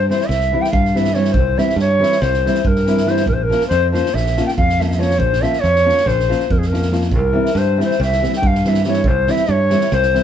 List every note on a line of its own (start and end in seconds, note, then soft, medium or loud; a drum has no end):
0.00 0.11 G2 loud
0.09 0.23 E3 medium
0.09 0.24 G3 medium
0.09 0.24 C4 medium
0.09 0.24 E4 medium
0.09 0.29 C5 loud
0.09 snare soft
0.21 snare soft
0.27 0.55 C2 loud
0.27 0.63 E5 loud
0.27 snare soft
0.41 snare soft
0.52 0.67 E3 medium
0.52 0.68 G3 medium
0.52 0.67 C4 medium
0.52 0.68 E4 medium
0.62 0.70 G5 loud
0.62 snare soft
0.71 1.35 G2 loud
0.71 0.98 F5 loud
0.71 kick loud
0.85 snare soft
0.95 1.09 E3 medium
0.95 1.09 G3 medium
0.95 1.09 C4 medium
0.95 1.10 E4 medium
0.95 1.16 E5 medium
0.95 snare soft
1.04 snare soft
1.14 1.29 E3 medium
1.14 1.29 G3 medium
1.14 1.29 C4 medium
1.14 1.30 E4 medium
1.14 1.34 C#5 loud
1.14 snare soft
1.24 snare soft
1.32 1.60 C2 medium
1.32 1.60 C5 loud
1.32 kick medium
1.56 1.72 E3 medium
1.56 1.72 G3 medium
1.56 1.73 C4 medium
1.56 1.73 E4 medium
1.56 1.78 E5 loud
1.56 snare soft
1.69 snare soft
1.76 2.03 G2 loud
1.76 2.23 C#5 loud
1.76 snare soft
1.99 2.15 E3 medium
1.99 2.15 G3 medium
1.99 2.16 C4 medium
1.99 2.16 E4 medium
1.99 snare soft
2.12 snare soft
2.21 2.48 C2 loud
2.21 2.69 C5 loud
2.21 snare soft
2.34 snare soft
2.45 2.60 E3 medium
2.45 2.60 G3 medium
2.45 2.60 C4 medium
2.45 2.60 E4 medium
2.45 snare soft
2.55 snare soft
2.65 3.27 G2 medium
2.65 3.11 A#4 medium
2.65 kick loud
2.76 snare soft
2.86 3.01 E3 medium
2.86 3.01 G3 medium
2.86 3.02 C4 medium
2.86 3.02 E4 medium
2.86 snare soft
2.97 snare soft
3.06 3.21 E3 medium
3.06 3.21 G3 medium
3.06 3.22 C4 medium
3.06 3.21 E4 medium
3.06 3.28 C5 loud
3.06 snare soft
3.17 snare soft
3.26 3.52 A#1 loud
3.26 3.35 A#4 medium
3.26 kick medium
3.33 3.44 C5 medium
3.43 3.67 A#4 loud
3.50 3.65 F3 medium
3.50 3.66 A#3 medium
3.50 3.66 C#4 medium
3.50 3.66 F4 medium
3.50 snare soft
3.60 snare soft
3.68 3.97 F2 loud
3.68 3.91 C5 loud
3.68 snare soft
3.92 4.08 F3 medium
3.92 4.08 A#3 medium
3.92 4.08 C#4 medium
3.92 4.09 F4 medium
3.92 4.16 C5 loud
3.92 snare soft
4.06 snare soft
4.14 4.40 A#1 loud
4.14 4.46 E5 loud
4.14 snare soft
4.26 snare soft
4.37 4.52 F3 medium
4.37 4.52 A#3 medium
4.37 4.53 C#4 medium
4.37 4.53 F4 medium
4.37 snare soft
4.46 4.51 G5 medium
4.46 snare soft
4.57 5.20 F2 medium
4.57 4.82 F5 loud
4.57 kick loud
4.69 snare soft
4.79 4.94 F3 medium
4.79 4.94 A#3 medium
4.79 4.95 C#4 medium
4.79 4.95 F4 medium
4.79 4.83 E5 medium
4.79 snare soft
4.84 4.88 E5 medium
4.89 4.93 E5 medium
4.89 snare soft
4.94 5.01 E5 medium
4.98 5.13 F3 medium
4.98 5.13 A#3 medium
4.98 5.14 C#4 medium
4.98 5.14 F4 medium
4.98 5.20 C#5 loud
4.98 snare soft
5.10 snare soft
5.19 5.45 A#1 loud
5.19 5.43 C5 loud
5.19 kick medium
5.33 snare soft
5.42 5.57 F3 medium
5.42 5.57 A#3 medium
5.42 5.57 C#4 medium
5.42 5.58 F4 medium
5.42 5.62 E5 loud
5.42 snare soft
5.53 snare soft
5.60 5.90 F2 loud
5.60 6.09 C#5 loud
5.60 snare soft
5.76 snare soft
5.85 6.00 F3 medium
5.85 6.01 A#3 medium
5.85 6.01 C#4 medium
5.85 6.01 F4 medium
5.89 snare soft
5.97 snare soft
6.06 6.32 A#1 loud
6.06 6.53 C5 loud
6.06 kick medium
6.06 snare soft
6.19 snare soft
6.29 6.44 F3 medium
6.29 6.45 A#3 medium
6.29 6.45 C#4 medium
6.29 6.45 F4 medium
6.29 snare soft
6.40 snare soft
6.50 7.14 F2 medium
6.50 6.60 A#4 medium
6.50 kick medium
6.58 6.69 G#4 medium
6.58 snare soft
6.68 6.93 A#4 medium
6.72 6.86 F3 medium
6.72 6.87 A#3 medium
6.72 6.87 C#4 medium
6.72 6.87 F4 medium
6.72 snare soft
6.82 snare soft
6.92 7.06 F3 medium
6.92 7.06 A#3 medium
6.92 7.07 C#4 medium
6.92 7.07 F4 medium
6.92 snare soft
7.01 snare soft
7.12 7.38 C2 loud
7.12 kick medium
7.16 7.59 A#4 loud
7.33 7.49 E3 medium
7.33 7.49 G3 medium
7.33 7.49 C4 medium
7.33 7.49 E4 medium
7.46 snare soft
7.55 7.81 G2 loud
7.55 7.80 C5 loud
7.55 snare soft
7.77 7.93 E3 medium
7.77 7.93 G3 medium
7.77 7.94 C4 medium
7.77 7.94 E4 medium
7.77 snare soft
7.84 8.01 C5 medium
7.91 snare soft
8.00 8.26 C2 loud
8.00 8.33 E5 loud
8.00 snare soft
8.12 snare soft
8.21 8.37 E3 medium
8.21 8.37 G3 medium
8.21 8.37 C4 medium
8.21 8.38 E4 medium
8.21 snare soft
8.33 8.48 G5 loud
8.33 snare soft
8.42 9.06 G2 medium
8.42 kick loud
8.47 8.70 F5 loud
8.55 snare soft
8.64 8.79 E3 medium
8.64 8.80 G3 medium
8.64 8.80 C4 medium
8.64 8.80 E4 medium
8.64 8.86 E5 medium
8.64 snare soft
8.74 snare soft
8.84 8.99 E3 medium
8.84 8.99 G3 medium
8.84 9.00 C4 medium
8.84 9.00 E4 medium
8.84 9.09 C#5 loud
8.84 snare soft
8.93 snare soft
9.04 9.30 C2 medium
9.04 9.32 C5 loud
9.04 kick medium
9.27 9.42 E3 medium
9.27 9.43 G3 medium
9.27 9.43 C4 medium
9.27 9.43 E4 medium
9.27 9.53 E5 loud
9.27 snare soft
9.36 snare soft
9.46 9.75 G2 loud
9.46 snare soft
9.51 9.95 C#5 loud
9.70 9.85 E3 medium
9.70 9.86 G3 medium
9.70 9.86 C4 medium
9.70 9.86 E4 medium
9.70 snare soft
9.81 snare soft
9.91 10.18 C2 loud
9.91 10.23 C5 loud
9.91 snare soft
10.02 snare soft
10.14 10.23 E3 medium
10.14 10.23 G3 medium
10.14 10.23 C4 medium
10.14 10.23 E4 medium
10.14 snare soft